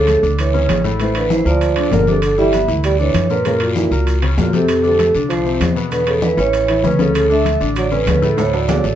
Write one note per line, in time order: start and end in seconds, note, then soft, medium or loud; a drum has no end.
0.00 0.18 D2 medium
0.00 0.22 C#3 medium
0.00 0.22 A4 medium
0.07 0.20 A3 medium
0.07 0.21 A4 medium
0.07 high conga medium
0.07 high timbale medium
0.07 short guiro medium
0.07 maracas medium
0.23 0.66 D2 medium
0.23 0.48 D3 medium
0.23 0.48 D4 medium
0.23 short guiro medium
0.23 maracas soft
0.38 0.82 E3 medium
0.38 0.82 C#5 medium
0.38 high conga soft
0.38 high timbale medium
0.38 long guiro medium
0.38 maracas medium
0.54 0.79 C#3 medium
0.54 0.79 C#4 medium
0.54 high conga soft
0.54 maracas soft
0.69 1.40 A1 medium
0.69 high conga medium
0.69 high timbale medium
0.69 low timbale medium
0.69 short guiro medium
0.69 maracas medium
0.84 0.97 A2 medium
0.84 0.97 A3 medium
0.84 high conga soft
0.84 short guiro medium
0.84 maracas soft
1.00 1.25 A2 medium
1.00 1.15 E3 medium
1.00 1.25 A3 medium
1.00 1.15 C5 medium
1.00 high timbale medium
1.00 long guiro medium
1.00 maracas medium
1.15 1.30 D3 medium
1.15 1.32 B4 medium
1.15 high conga soft
1.15 high timbale medium
1.15 maracas soft
1.30 1.43 E3 medium
1.30 1.45 E3 medium
1.30 1.43 E4 medium
1.30 1.47 C5 medium
1.30 high conga loud
1.30 short guiro medium
1.30 maracas medium
1.45 1.88 D2 medium
1.45 1.89 F3 medium
1.45 1.71 A#3 medium
1.45 1.71 A#4 medium
1.45 1.90 D5 loud
1.45 high conga soft
1.45 short guiro medium
1.45 maracas soft
1.61 high conga soft
1.61 high timbale medium
1.61 long guiro medium
1.61 maracas medium
1.76 1.89 D3 medium
1.76 1.89 D4 medium
1.76 high conga soft
1.76 high timbale medium
1.76 maracas soft
1.91 2.63 G1 medium
1.91 2.05 A#2 medium
1.91 2.07 D3 medium
1.91 2.05 A#3 medium
1.91 2.07 A#4 medium
1.91 high conga medium
1.91 low timbale medium
1.91 short guiro medium
1.91 maracas medium
2.07 2.22 C3 medium
2.07 2.33 D3 medium
2.07 2.33 D4 medium
2.07 2.22 A4 medium
2.07 high conga medium
2.07 short guiro medium
2.07 maracas soft
2.22 2.37 D3 medium
2.22 2.38 A4 medium
2.22 high timbale medium
2.22 long guiro medium
2.22 maracas medium
2.38 2.51 E3 medium
2.38 2.67 G3 medium
2.38 2.51 E4 medium
2.38 2.67 E5 loud
2.38 high conga soft
2.38 maracas soft
2.53 2.66 B3 medium
2.53 2.66 B4 medium
2.53 high conga medium
2.53 high timbale medium
2.53 short guiro medium
2.53 maracas medium
2.68 3.11 D2 medium
2.68 2.94 E3 medium
2.68 2.94 E4 medium
2.68 short guiro medium
2.68 maracas soft
2.84 2.99 G3 medium
2.84 3.01 D5 loud
2.84 high conga soft
2.84 high timbale medium
2.84 long guiro medium
2.84 maracas medium
2.98 3.24 D3 medium
2.98 3.29 E3 medium
2.98 3.25 D4 medium
2.98 3.32 C#5 medium
2.98 high conga soft
2.98 maracas soft
3.14 3.86 F#2 medium
3.14 high conga medium
3.14 high timbale medium
3.14 short guiro medium
3.14 maracas medium
3.30 3.43 A#2 medium
3.30 3.37 D3 medium
3.30 3.43 A#3 medium
3.30 3.38 B4 medium
3.30 short guiro medium
3.30 maracas soft
3.45 3.71 A#2 medium
3.45 3.60 C#3 medium
3.45 3.71 A#3 medium
3.45 3.62 A#4 loud
3.45 high conga soft
3.45 high timbale medium
3.45 long guiro medium
3.45 maracas medium
3.60 4.19 A#2 medium
3.60 4.19 F#4 medium
3.60 high conga soft
3.60 high timbale medium
3.60 maracas soft
3.76 3.89 E3 medium
3.76 3.89 E4 medium
3.76 high conga medium
3.76 short guiro medium
3.76 maracas medium
3.91 4.34 C#2 medium
3.91 4.17 A#3 medium
3.91 4.17 A#4 medium
3.91 high conga soft
3.91 short guiro medium
3.91 maracas soft
4.07 high conga soft
4.07 high timbale medium
4.07 long guiro medium
4.07 maracas medium
4.22 4.35 C#3 medium
4.22 4.35 C#4 medium
4.22 high conga soft
4.22 high timbale medium
4.22 maracas soft
4.38 5.09 F2 medium
4.38 4.51 A#2 medium
4.38 4.53 A#2 medium
4.38 4.51 A#3 medium
4.38 4.53 F#4 medium
4.38 high conga medium
4.38 low timbale medium
4.38 short guiro medium
4.38 maracas medium
4.53 4.79 C3 medium
4.53 4.82 C3 medium
4.53 4.79 C4 medium
4.53 4.84 A4 medium
4.53 high conga medium
4.53 short guiro medium
4.53 maracas soft
4.68 high timbale medium
4.68 long guiro medium
4.68 maracas medium
4.83 5.13 C3 medium
4.83 4.96 D3 medium
4.83 4.96 D4 medium
4.83 5.13 A4 medium
4.83 high conga soft
4.83 maracas soft
4.99 5.12 A3 medium
4.99 5.12 A4 medium
4.99 high conga medium
4.99 high timbale medium
4.99 short guiro medium
4.99 maracas medium
5.14 5.58 C2 medium
5.14 5.40 D3 medium
5.14 5.40 D4 medium
5.14 high conga soft
5.14 short guiro medium
5.14 maracas soft
5.29 5.73 F3 medium
5.29 5.74 C5 medium
5.29 high conga soft
5.29 high timbale medium
5.29 long guiro medium
5.29 maracas medium
5.45 5.70 C3 medium
5.45 5.71 C4 medium
5.45 high conga soft
5.45 maracas soft
5.61 6.32 E2 medium
5.61 high conga medium
5.61 high timbale medium
5.61 low timbale medium
5.61 short guiro medium
5.61 maracas medium
5.76 5.89 B2 medium
5.76 5.89 B3 medium
5.76 short guiro medium
5.76 maracas soft
5.91 6.17 B2 medium
5.91 6.06 D3 medium
5.91 6.17 B3 medium
5.91 6.06 B4 medium
5.91 high conga soft
5.91 high timbale medium
5.91 long guiro medium
5.91 maracas medium
6.07 6.21 C#3 medium
6.07 6.22 A4 medium
6.07 high conga soft
6.07 high timbale medium
6.07 maracas soft
6.22 6.29 D3 medium
6.22 6.35 E3 medium
6.22 6.35 E4 medium
6.22 6.30 B4 medium
6.22 high conga loud
6.22 short guiro medium
6.22 maracas medium
6.37 6.80 A1 medium
6.37 6.81 E3 medium
6.37 6.63 C#4 medium
6.37 6.63 C#5 medium
6.37 6.81 C#5 loud
6.37 high conga soft
6.37 short guiro medium
6.37 maracas soft
6.53 high conga soft
6.53 high timbale medium
6.53 long guiro medium
6.53 maracas medium
6.68 6.81 E3 medium
6.68 6.82 E4 medium
6.68 high conga soft
6.68 high timbale medium
6.68 maracas soft
6.84 7.55 D2 medium
6.84 6.96 C#3 medium
6.84 6.91 E3 medium
6.84 6.97 C#4 medium
6.84 6.92 B4 medium
6.84 high conga medium
6.84 short guiro medium
6.84 maracas medium
6.99 7.13 C#3 medium
6.99 7.24 C#3 medium
6.99 7.25 C#4 medium
6.99 7.14 A4 medium
6.99 high conga medium
6.99 short guiro medium
6.99 maracas soft
7.14 7.29 C#3 medium
7.14 7.31 A4 medium
7.14 high conga soft
7.14 high timbale medium
7.14 long guiro medium
7.14 maracas medium
7.29 7.42 D3 medium
7.29 7.59 A3 medium
7.29 7.42 D4 medium
7.29 7.60 E5 loud
7.29 high conga soft
7.29 maracas soft
7.45 7.58 A3 medium
7.45 7.58 A4 medium
7.45 high conga medium
7.45 high timbale medium
7.45 short guiro medium
7.45 maracas medium
7.60 8.04 A1 medium
7.60 7.86 D3 medium
7.60 7.86 D4 medium
7.60 high conga soft
7.60 short guiro medium
7.60 maracas soft
7.76 7.91 F#3 medium
7.76 7.93 D5 medium
7.76 high conga soft
7.76 high timbale medium
7.76 long guiro medium
7.76 maracas medium
7.91 8.17 C#3 medium
7.91 8.06 D3 medium
7.91 8.17 C#4 medium
7.91 8.07 B4 medium
7.91 high conga soft
7.91 maracas soft
8.07 8.78 D2 medium
8.07 8.22 D3 medium
8.07 8.24 B4 medium
8.07 high conga medium
8.07 high timbale medium
8.07 low timbale medium
8.07 short guiro medium
8.07 maracas medium
8.22 8.35 A2 medium
8.22 8.33 C#3 medium
8.22 8.35 A3 medium
8.22 8.34 A4 medium
8.22 high conga soft
8.22 short guiro medium
8.22 maracas soft
8.34 8.63 A2 medium
8.34 8.38 D3 medium
8.34 8.45 E3 medium
8.34 8.63 A3 medium
8.34 8.39 C5 medium
8.34 high conga soft
8.34 high timbale medium
8.34 long guiro medium
8.34 maracas medium
8.39 8.46 C#5 medium
8.53 8.95 F#3 medium
8.53 8.95 D5 medium
8.53 high conga soft
8.53 high timbale medium
8.53 maracas soft
8.68 8.81 D3 medium
8.68 8.81 D4 medium
8.68 high conga medium
8.68 low timbale loud
8.68 short guiro medium
8.68 maracas medium
8.84 8.95 A1 medium
8.84 8.95 A3 medium
8.84 8.95 A4 medium
8.84 short guiro medium
8.84 maracas soft